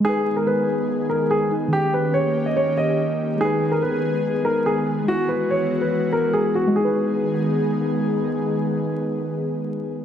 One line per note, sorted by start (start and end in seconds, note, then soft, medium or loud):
0.00 1.46 G#3 medium
0.05 5.04 D#3 medium
0.05 1.71 G#3 medium
0.05 1.71 B3 medium
0.05 1.48 D#4 medium
0.05 1.71 G#4 medium
0.05 0.34 G#4 loud
0.09 1.51 B4 medium
0.37 0.46 A#4 medium
0.47 0.86 B4 medium
1.10 1.29 A#4 medium
1.31 1.50 G#4 medium
1.49 1.71 G#3 soft
1.49 1.72 D#4 soft
1.54 1.73 B4 medium
1.68 3.35 D#3 medium
1.72 3.39 A#3 medium
1.72 3.37 C#4 medium
1.72 3.39 C#4 medium
1.72 3.39 G4 medium
1.72 1.92 G4 loud
1.77 3.39 G4 medium
1.94 2.13 B4 medium
2.14 2.44 C#5 medium
2.46 2.56 D#5 medium
2.57 2.76 C#5 medium
2.78 3.37 D#5 medium
3.36 4.41 G#3 medium
3.40 6.73 G#3 medium
3.40 6.73 B3 medium
3.40 4.43 D#4 medium
3.40 5.06 G#4 medium
3.40 3.70 G#4 loud
3.44 4.45 B4 medium
3.72 3.82 A#4 medium
3.82 4.22 B4 medium
4.43 5.03 G#3 medium
4.43 5.08 D#4 soft
4.43 4.65 A#4 medium
4.47 5.09 G#4 medium
4.66 4.86 G#4 medium
5.04 6.66 G#3 medium
5.08 6.74 E3 medium
5.08 6.73 E4 medium
5.08 6.74 F#4 medium
5.08 5.28 F#4 loud
5.12 6.75 F#4 medium
5.29 5.49 B4 medium
5.51 5.80 C#5 medium
5.81 6.11 B4 medium
6.13 6.32 A#4 medium
6.33 6.53 G#4 medium
6.55 6.75 F#4 medium
6.67 10.05 G#3 medium
6.76 10.05 D#3 medium
6.76 10.05 G#3 medium
6.76 10.05 B3 medium
6.76 10.05 D#4 medium
6.76 7.98 G#4 medium
6.76 10.05 G#4 medium
6.84 10.05 B4 medium